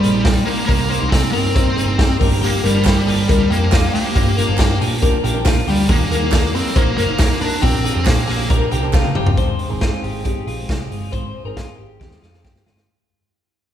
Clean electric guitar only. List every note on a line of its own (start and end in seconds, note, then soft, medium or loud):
0.03 0.25 G#4 medium
0.25 0.47 G4 medium
0.46 0.67 A#4 medium
0.68 0.90 A#4 loud
0.90 1.11 C5 medium
1.11 1.33 G#4 medium
1.33 1.55 A#4 medium
1.55 1.76 C5 medium
1.77 1.98 G#4 medium
1.98 2.19 G4 medium
2.19 2.41 A#4 medium
2.42 2.63 G4 loud
2.64 2.85 A#4 medium
2.85 3.07 G4 loud
3.07 3.29 G#4 medium
3.29 3.50 A#4 loud
3.50 3.72 G4 medium
3.72 3.94 F4 medium
3.93 4.14 G4 medium
4.15 4.36 G4 loud
4.37 4.58 A#4 medium
4.59 4.81 G4 medium
4.81 5.02 G#4 medium
5.02 5.24 A#4 medium
5.24 5.46 G4 medium
5.46 5.68 F4 medium
5.68 5.89 G4 medium
5.89 6.11 G#4 loud
6.11 6.32 A#4 medium
6.32 6.54 G#4 medium
6.54 6.75 A#4 medium
6.76 6.97 C5 medium
6.98 7.19 A#4 medium
7.19 7.41 G#4 medium
7.41 7.62 A#4 medium
7.62 7.84 G4 loud
7.84 8.06 G#4 medium
8.06 8.27 G4 loud
8.28 8.49 G#4 medium
8.50 8.71 A#4 medium
8.72 8.94 G4 medium
8.94 9.16 F4 medium
9.16 9.38 G4 medium
9.38 9.70 C5 loud
9.70 9.81 A#4 medium
9.82 10.03 F4 medium
10.03 10.24 G4 medium
10.25 10.47 G4 medium
10.47 10.69 F4 medium
10.69 10.91 G4 medium
10.91 11.13 F4 medium
11.12 11.43 C5 medium
11.45 11.56 A#4 medium
11.57 11.78 F4 medium
11.78 11.99 G4 medium
12.00 12.22 G4 medium
12.22 12.44 F4 medium
12.44 12.66 G4 medium
12.66 12.88 F4 medium